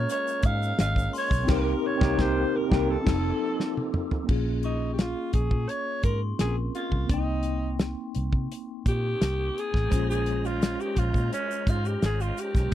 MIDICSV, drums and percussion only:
0, 0, Header, 1, 2, 480
1, 0, Start_track
1, 0, Tempo, 701754
1, 1018, Time_signature, 4, 2, 24, 8
1, 8714, End_track
2, 0, Start_track
2, 0, Title_t, "Drums"
2, 65, Note_on_c, 9, 82, 68
2, 66, Note_on_c, 9, 42, 88
2, 133, Note_off_c, 9, 82, 0
2, 134, Note_off_c, 9, 42, 0
2, 189, Note_on_c, 9, 82, 57
2, 257, Note_off_c, 9, 82, 0
2, 291, Note_on_c, 9, 42, 65
2, 297, Note_on_c, 9, 36, 105
2, 359, Note_off_c, 9, 42, 0
2, 365, Note_off_c, 9, 36, 0
2, 429, Note_on_c, 9, 82, 42
2, 498, Note_off_c, 9, 82, 0
2, 537, Note_on_c, 9, 38, 98
2, 538, Note_on_c, 9, 42, 94
2, 548, Note_on_c, 9, 82, 57
2, 606, Note_off_c, 9, 38, 0
2, 607, Note_off_c, 9, 42, 0
2, 616, Note_off_c, 9, 82, 0
2, 657, Note_on_c, 9, 36, 78
2, 671, Note_on_c, 9, 82, 49
2, 725, Note_off_c, 9, 36, 0
2, 739, Note_off_c, 9, 82, 0
2, 783, Note_on_c, 9, 46, 67
2, 787, Note_on_c, 9, 82, 51
2, 852, Note_off_c, 9, 46, 0
2, 855, Note_off_c, 9, 82, 0
2, 895, Note_on_c, 9, 36, 92
2, 907, Note_on_c, 9, 82, 46
2, 964, Note_off_c, 9, 36, 0
2, 975, Note_off_c, 9, 82, 0
2, 1012, Note_on_c, 9, 49, 77
2, 1015, Note_on_c, 9, 38, 108
2, 1017, Note_on_c, 9, 36, 119
2, 1080, Note_off_c, 9, 49, 0
2, 1083, Note_off_c, 9, 38, 0
2, 1085, Note_off_c, 9, 36, 0
2, 1377, Note_on_c, 9, 36, 115
2, 1380, Note_on_c, 9, 38, 110
2, 1445, Note_off_c, 9, 36, 0
2, 1448, Note_off_c, 9, 38, 0
2, 1495, Note_on_c, 9, 38, 110
2, 1496, Note_on_c, 9, 36, 111
2, 1563, Note_off_c, 9, 38, 0
2, 1565, Note_off_c, 9, 36, 0
2, 1857, Note_on_c, 9, 36, 105
2, 1861, Note_on_c, 9, 38, 106
2, 1926, Note_off_c, 9, 36, 0
2, 1929, Note_off_c, 9, 38, 0
2, 2097, Note_on_c, 9, 36, 104
2, 2097, Note_on_c, 9, 49, 82
2, 2100, Note_on_c, 9, 38, 111
2, 2165, Note_off_c, 9, 36, 0
2, 2166, Note_off_c, 9, 49, 0
2, 2168, Note_off_c, 9, 38, 0
2, 2461, Note_on_c, 9, 38, 60
2, 2529, Note_off_c, 9, 38, 0
2, 2581, Note_on_c, 9, 48, 60
2, 2649, Note_off_c, 9, 48, 0
2, 2694, Note_on_c, 9, 45, 93
2, 2762, Note_off_c, 9, 45, 0
2, 2813, Note_on_c, 9, 43, 96
2, 2882, Note_off_c, 9, 43, 0
2, 2933, Note_on_c, 9, 36, 109
2, 2933, Note_on_c, 9, 49, 84
2, 3001, Note_off_c, 9, 49, 0
2, 3002, Note_off_c, 9, 36, 0
2, 3166, Note_on_c, 9, 42, 69
2, 3235, Note_off_c, 9, 42, 0
2, 3411, Note_on_c, 9, 42, 80
2, 3412, Note_on_c, 9, 38, 98
2, 3479, Note_off_c, 9, 42, 0
2, 3481, Note_off_c, 9, 38, 0
2, 3646, Note_on_c, 9, 42, 79
2, 3650, Note_on_c, 9, 36, 82
2, 3714, Note_off_c, 9, 42, 0
2, 3718, Note_off_c, 9, 36, 0
2, 3769, Note_on_c, 9, 36, 82
2, 3837, Note_off_c, 9, 36, 0
2, 3892, Note_on_c, 9, 42, 77
2, 3960, Note_off_c, 9, 42, 0
2, 4124, Note_on_c, 9, 42, 61
2, 4128, Note_on_c, 9, 36, 88
2, 4193, Note_off_c, 9, 42, 0
2, 4197, Note_off_c, 9, 36, 0
2, 4372, Note_on_c, 9, 38, 90
2, 4372, Note_on_c, 9, 42, 92
2, 4440, Note_off_c, 9, 38, 0
2, 4441, Note_off_c, 9, 42, 0
2, 4616, Note_on_c, 9, 42, 67
2, 4684, Note_off_c, 9, 42, 0
2, 4731, Note_on_c, 9, 36, 75
2, 4800, Note_off_c, 9, 36, 0
2, 4853, Note_on_c, 9, 36, 116
2, 4853, Note_on_c, 9, 42, 75
2, 4921, Note_off_c, 9, 36, 0
2, 4921, Note_off_c, 9, 42, 0
2, 5081, Note_on_c, 9, 42, 72
2, 5149, Note_off_c, 9, 42, 0
2, 5331, Note_on_c, 9, 42, 79
2, 5332, Note_on_c, 9, 38, 108
2, 5399, Note_off_c, 9, 42, 0
2, 5400, Note_off_c, 9, 38, 0
2, 5572, Note_on_c, 9, 42, 72
2, 5640, Note_off_c, 9, 42, 0
2, 5695, Note_on_c, 9, 36, 86
2, 5763, Note_off_c, 9, 36, 0
2, 5825, Note_on_c, 9, 42, 85
2, 5893, Note_off_c, 9, 42, 0
2, 6059, Note_on_c, 9, 36, 98
2, 6061, Note_on_c, 9, 42, 59
2, 6128, Note_off_c, 9, 36, 0
2, 6130, Note_off_c, 9, 42, 0
2, 6303, Note_on_c, 9, 38, 99
2, 6303, Note_on_c, 9, 42, 99
2, 6371, Note_off_c, 9, 38, 0
2, 6372, Note_off_c, 9, 42, 0
2, 6552, Note_on_c, 9, 42, 64
2, 6621, Note_off_c, 9, 42, 0
2, 6661, Note_on_c, 9, 36, 83
2, 6671, Note_on_c, 9, 38, 34
2, 6730, Note_off_c, 9, 36, 0
2, 6739, Note_off_c, 9, 38, 0
2, 6783, Note_on_c, 9, 36, 109
2, 6785, Note_on_c, 9, 82, 68
2, 6787, Note_on_c, 9, 42, 81
2, 6852, Note_off_c, 9, 36, 0
2, 6854, Note_off_c, 9, 82, 0
2, 6856, Note_off_c, 9, 42, 0
2, 6914, Note_on_c, 9, 82, 60
2, 6983, Note_off_c, 9, 82, 0
2, 7020, Note_on_c, 9, 42, 73
2, 7088, Note_off_c, 9, 42, 0
2, 7148, Note_on_c, 9, 82, 45
2, 7216, Note_off_c, 9, 82, 0
2, 7266, Note_on_c, 9, 82, 64
2, 7268, Note_on_c, 9, 42, 84
2, 7270, Note_on_c, 9, 38, 106
2, 7334, Note_off_c, 9, 82, 0
2, 7337, Note_off_c, 9, 42, 0
2, 7338, Note_off_c, 9, 38, 0
2, 7390, Note_on_c, 9, 82, 41
2, 7458, Note_off_c, 9, 82, 0
2, 7499, Note_on_c, 9, 42, 83
2, 7502, Note_on_c, 9, 36, 79
2, 7567, Note_off_c, 9, 42, 0
2, 7570, Note_off_c, 9, 36, 0
2, 7621, Note_on_c, 9, 36, 82
2, 7632, Note_on_c, 9, 82, 43
2, 7690, Note_off_c, 9, 36, 0
2, 7700, Note_off_c, 9, 82, 0
2, 7747, Note_on_c, 9, 42, 86
2, 7754, Note_on_c, 9, 82, 60
2, 7816, Note_off_c, 9, 42, 0
2, 7822, Note_off_c, 9, 82, 0
2, 7873, Note_on_c, 9, 82, 55
2, 7941, Note_off_c, 9, 82, 0
2, 7981, Note_on_c, 9, 36, 98
2, 7983, Note_on_c, 9, 42, 63
2, 7990, Note_on_c, 9, 82, 54
2, 8050, Note_off_c, 9, 36, 0
2, 8051, Note_off_c, 9, 42, 0
2, 8058, Note_off_c, 9, 82, 0
2, 8107, Note_on_c, 9, 82, 45
2, 8176, Note_off_c, 9, 82, 0
2, 8225, Note_on_c, 9, 38, 95
2, 8226, Note_on_c, 9, 42, 86
2, 8226, Note_on_c, 9, 82, 49
2, 8293, Note_off_c, 9, 38, 0
2, 8294, Note_off_c, 9, 42, 0
2, 8295, Note_off_c, 9, 82, 0
2, 8349, Note_on_c, 9, 82, 43
2, 8417, Note_off_c, 9, 82, 0
2, 8464, Note_on_c, 9, 82, 49
2, 8467, Note_on_c, 9, 42, 68
2, 8533, Note_off_c, 9, 82, 0
2, 8536, Note_off_c, 9, 42, 0
2, 8582, Note_on_c, 9, 36, 81
2, 8588, Note_on_c, 9, 38, 35
2, 8588, Note_on_c, 9, 82, 46
2, 8650, Note_off_c, 9, 36, 0
2, 8656, Note_off_c, 9, 38, 0
2, 8657, Note_off_c, 9, 82, 0
2, 8714, End_track
0, 0, End_of_file